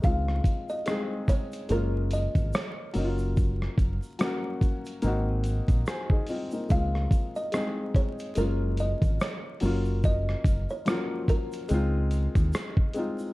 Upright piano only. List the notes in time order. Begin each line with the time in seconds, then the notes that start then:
0.02 G#3 C4 D#4
0.07 F4
0.86 G#3 C4 D#4
0.90 G#4
1.69 G#3 A#3 C#4
1.73 F4
2.93 F#3 A#3 C#4
2.98 D#4
3.04 F4
4.19 F#3 A#3 C#4
4.24 F#4
5.02 A#3 C4 D#4
5.07 F#4
5.88 F#4 C5 G#5
6.11 D#4 G#4
6.29 C4 F4 D#5
6.53 A#3 D#4
6.69 G#3 C4 D#4
6.74 F4
7.52 G#3 C4 D#4
7.57 G#4
8.35 G#3 A#3 C#4
8.40 F4
9.61 F#3 A#3 C#4
9.65 F4
10.85 F3 A#3 C#4
10.90 F#3 F4
11.69 G#3 C4 D#4
11.74 F4
12.94 G#3 C4 D#4
12.99 F4